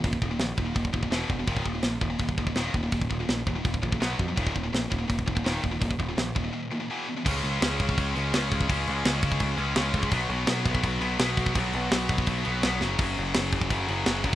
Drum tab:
CC |----------------|----------------|----------------|----------------|
HH |o---o---o---o---|o---o---o---o---|o---o---o---o---|o---o---o---o---|
SD |----o-------o---|----o-------o---|----o-------o---|----o-------o---|
BD |ooo---o-oooo--o-|ooo---o-oooo--o-|ooo---o-oooo--o-|ooo---o-oooo--o-|

CC |----------------|x-x-x-x-x-x-x-x-|x-x-x-x-x-x-x-x-|x-x-x-x-x-x-x-x-|
HH |o---o-----------|----------------|----------------|----------------|
SD |----o-----------|----o-------o---|----o-------o---|----o-------o---|
BD |ooo---o---------|o-----ooo-----oo|o-----ooo-----oo|o-----ooo-----oo|

CC |x-x-x-x-x-x-x---|x-x-x-x-x-x-x-x-|
HH |----------------|----------------|
SD |----o-------o-o-|----o-------o---|
BD |o-----ooo-------|o-----ooo-----o-|